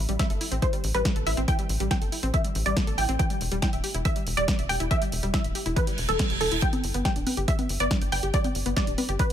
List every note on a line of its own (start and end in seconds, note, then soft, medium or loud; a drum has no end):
0.00 0.15 E5 loud
0.09 0.17 A1 medium
0.09 0.14 G3 loud
0.09 closed hi-hat soft
0.19 0.23 C4 medium
0.19 0.57 E5 loud
0.19 kick loud
0.19 snare loud
0.19 closed hi-hat medium
0.30 0.39 G1 medium
0.30 0.36 A4 medium
0.30 closed hi-hat soft
0.41 0.44 E4 medium
0.41 open hi-hat loud
0.52 0.60 A1 medium
0.52 0.57 C4 medium
0.52 closed hi-hat soft
0.62 0.66 E3 medium
0.62 0.91 C5 medium
0.62 kick loud
0.62 closed hi-hat medium
0.73 0.82 G3 medium
0.73 closed hi-hat soft
0.84 0.92 A1 loud
0.84 open hi-hat loud
0.94 1.03 A1 medium
0.94 1.00 G3 loud
0.94 1.23 B4 medium
0.94 closed hi-hat medium
1.05 1.09 A3 medium
1.05 kick loud
1.05 snare loud
1.05 closed hi-hat medium
1.16 1.24 A1 medium
1.16 1.22 A4 medium
1.16 closed hi-hat soft
1.27 1.35 A1 medium
1.27 1.30 E4 medium
1.27 1.46 E5 medium
1.27 open hi-hat loud
1.37 1.46 A1 medium
1.37 1.43 C4 loud
1.37 closed hi-hat soft
1.48 1.54 E3 loud
1.48 1.86 G5 loud
1.48 kick loud
1.48 closed hi-hat medium
1.59 1.67 G3 medium
1.59 closed hi-hat soft
1.69 1.78 A1 medium
1.69 open hi-hat loud
1.80 1.89 A1 medium
1.80 1.86 G3 loud
1.80 closed hi-hat medium
1.91 1.94 C4 medium
1.91 2.29 G5 medium
1.91 kick loud
1.91 snare loud
1.91 closed hi-hat medium
2.01 2.10 G1 medium
2.01 2.07 A4 medium
2.01 closed hi-hat soft
2.12 2.16 E4 medium
2.12 open hi-hat medium
2.23 2.31 A1 medium
2.23 2.29 C4 loud
2.23 closed hi-hat soft
2.34 2.37 E3 medium
2.34 2.62 E5 medium
2.34 kick loud
2.34 closed hi-hat medium
2.44 2.53 G3 medium
2.44 closed hi-hat medium
2.55 2.64 A1 loud
2.55 open hi-hat loud
2.66 2.74 A1 medium
2.66 2.72 G3 loud
2.66 2.94 D5 medium
2.66 closed hi-hat medium
2.77 2.80 A3 medium
2.77 kick loud
2.77 snare loud
2.77 closed hi-hat medium
2.87 2.96 A1 medium
2.87 2.93 A4 medium
2.87 closed hi-hat soft
2.98 3.07 A1 medium
2.98 3.01 E4 medium
2.98 3.17 G5 medium
2.98 open hi-hat loud
3.09 3.17 A1 medium
3.09 3.14 C4 loud
3.09 closed hi-hat medium
3.19 3.25 E3 loud
3.19 3.57 G5 loud
3.19 kick loud
3.19 closed hi-hat medium
3.30 3.39 G3 medium
3.30 closed hi-hat medium
3.41 3.49 E1 medium
3.41 open hi-hat loud
3.52 3.60 E1 medium
3.52 3.57 G3 loud
3.52 closed hi-hat medium
3.62 3.66 E4 medium
3.62 4.00 G5 medium
3.62 kick loud
3.62 snare loud
3.62 closed hi-hat medium
3.73 3.81 D1 medium
3.73 3.79 E5 medium
3.73 closed hi-hat medium
3.84 3.87 G4 medium
3.84 open hi-hat loud
3.94 4.03 E1 medium
3.94 4.00 E4 medium
3.94 closed hi-hat medium
4.05 4.09 E3 medium
4.05 4.34 E5 loud
4.05 kick loud
4.05 closed hi-hat medium
4.16 4.24 G3 medium
4.16 closed hi-hat medium
4.27 4.35 E1 loud
4.27 open hi-hat loud
4.37 4.46 E1 medium
4.37 4.43 G3 loud
4.37 4.66 D5 medium
4.37 closed hi-hat medium
4.48 4.51 B3 medium
4.48 kick loud
4.48 snare loud
4.48 closed hi-hat medium
4.59 4.67 E1 medium
4.59 4.64 E5 medium
4.59 closed hi-hat medium
4.69 4.78 E1 medium
4.69 4.73 G4 medium
4.69 4.88 G5 medium
4.69 open hi-hat loud
4.80 4.89 E1 medium
4.80 4.86 E4 loud
4.80 closed hi-hat medium
4.91 4.96 E3 loud
4.91 5.29 E5 loud
4.91 kick loud
4.91 closed hi-hat medium
5.01 5.10 G3 medium
5.01 closed hi-hat medium
5.12 5.21 E1 medium
5.12 open hi-hat loud
5.23 5.32 E1 medium
5.23 5.29 G3 loud
5.23 closed hi-hat medium
5.34 5.37 E4 medium
5.34 5.72 E5 medium
5.34 kick loud
5.34 snare loud
5.34 closed hi-hat medium
5.44 5.53 D1 medium
5.44 5.50 E5 medium
5.44 closed hi-hat medium
5.55 5.59 G4 medium
5.55 open hi-hat loud
5.66 5.74 E1 medium
5.66 5.71 E4 loud
5.66 closed hi-hat medium
5.76 5.80 E3 medium
5.76 6.05 B4 medium
5.76 kick loud
5.76 closed hi-hat medium
5.76 reverse cymbal medium
5.87 5.96 G3 medium
5.87 closed hi-hat medium
5.98 6.07 E1 medium
5.98 open hi-hat loud
6.09 6.17 E1 medium
6.09 6.14 E3 medium
6.09 6.37 A4 medium
6.09 snare soft
6.09 closed hi-hat medium
6.19 6.25 G3 medium
6.19 kick loud
6.19 snare loud
6.19 closed hi-hat medium
6.30 6.39 E1 medium
6.30 6.39 G3 medium
6.30 closed hi-hat medium
6.41 6.49 E1 loud
6.41 6.49 E3 medium
6.41 6.60 A4 medium
6.41 open hi-hat loud
6.52 6.60 E1 medium
6.52 6.57 E4 loud
6.52 closed hi-hat medium
6.62 6.68 G3 medium
6.62 7.00 G5 medium
6.62 kick loud
6.62 closed hi-hat medium
6.73 6.82 B3 medium
6.73 closed hi-hat medium
6.73 high conga medium
6.84 6.92 G1 medium
6.84 open hi-hat loud
6.94 7.03 G1 medium
6.94 7.00 B3 loud
6.94 closed hi-hat medium
7.05 7.09 G4 medium
7.05 7.43 G5 medium
7.05 kick loud
7.05 snare loud
7.05 closed hi-hat medium
7.16 7.24 D1 medium
7.16 7.19 D4 medium
7.16 closed hi-hat medium
7.27 7.30 B4 medium
7.27 open hi-hat loud
7.27 high conga medium
7.37 7.46 G1 medium
7.37 7.43 G4 loud
7.37 closed hi-hat medium
7.48 7.51 G3 medium
7.48 7.77 E5 loud
7.48 kick loud
7.48 closed hi-hat medium
7.59 7.67 B3 medium
7.59 closed hi-hat medium
7.59 high conga medium
7.69 7.78 G1 loud
7.69 open hi-hat loud
7.80 7.89 G1 medium
7.80 7.86 B3 loud
7.80 8.09 D5 medium
7.80 closed hi-hat medium
7.91 7.94 D4 medium
7.91 kick loud
7.91 snare loud
7.91 closed hi-hat medium
8.02 8.10 G1 medium
8.02 8.07 G5 medium
8.02 closed hi-hat medium
8.12 8.21 G1 medium
8.12 8.16 B4 medium
8.12 8.31 G5 medium
8.12 open hi-hat loud
8.23 8.31 G1 medium
8.23 8.29 G4 loud
8.23 closed hi-hat medium
8.34 8.39 G3 loud
8.34 8.72 D5 loud
8.34 kick loud
8.34 closed hi-hat medium
8.44 8.53 B3 medium
8.44 closed hi-hat medium
8.44 high conga medium
8.55 8.64 G1 medium
8.55 open hi-hat loud
8.66 8.74 G1 medium
8.66 8.72 B3 loud
8.66 closed hi-hat soft
8.77 8.80 G4 medium
8.77 9.15 D5 medium
8.77 kick loud
8.77 snare loud
8.77 closed hi-hat medium
8.87 8.96 D1 medium
8.87 8.91 D4 medium
8.87 closed hi-hat soft
8.98 9.01 B4 medium
8.98 open hi-hat loud
8.98 high conga medium
9.09 9.17 G1 medium
9.09 9.14 G4 medium
9.09 closed hi-hat medium
9.19 9.23 G3 medium
9.19 9.33 B4 medium
9.19 kick loud
9.19 closed hi-hat medium